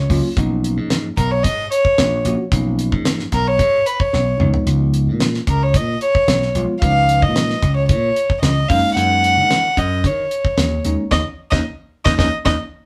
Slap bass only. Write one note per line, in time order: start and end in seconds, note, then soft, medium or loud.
0.09 0.20 C#2 medium
0.36 0.78 B1 medium
0.77 1.07 G#2 medium
1.17 1.46 B1 medium
1.45 1.65 G#2 medium
1.98 2.19 A#1 medium
2.25 2.35 A#1 medium
2.52 2.94 B1 medium
2.92 3.23 G#2 medium
3.32 3.60 B1 medium
3.59 3.79 G#2 medium
4.14 4.34 B1 medium
4.40 4.51 C#2 medium
4.66 5.09 C#2 medium
5.07 5.38 A#2 medium
5.47 5.76 C#2 medium
5.74 5.94 A#2 medium
6.28 6.48 B1 medium
6.55 6.65 B1 medium
6.82 7.24 C#2 medium
7.22 7.53 A#2 medium
7.63 7.91 C#2 medium
7.89 8.10 A#2 medium
8.42 8.63 C#2 medium
8.69 8.80 F#2 medium
8.96 9.38 F#2 loud
9.37 9.67 D#3 medium
9.77 10.05 F#2 medium
10.04 10.24 D#3 medium
10.57 10.78 D#2 medium
10.85 10.95 D#2 medium
11.11 11.22 D#2 medium
11.52 11.62 D#2 medium
12.06 12.16 D#2 medium
12.19 12.29 D#2 medium
12.45 12.56 D#2 medium